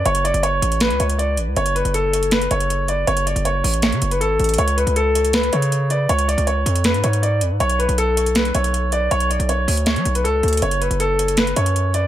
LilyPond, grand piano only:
\new Staff \with { instrumentName = "Grand piano" } { \time 4/4 \key fis \minor \tempo 4 = 159 cis''8 d''8 cis''4 b'8 cis''8 d''8 r8 | cis''8 b'8 a'4 b'8 cis''4 d''8 | cis''8 d''8 cis''4 cis''8. b'16 a'4 | cis''8 b'8 a'4 b'8 cis''4 d''8 |
cis''8 d''8 cis''4 b'8 cis''8 d''8 r8 | cis''8 b'8 a'4 b'8 cis''4 d''8 | cis''8 d''8 cis''4 cis''8. b'16 a'4 | cis''8 b'8 a'4 b'8 cis''4 d''8 | }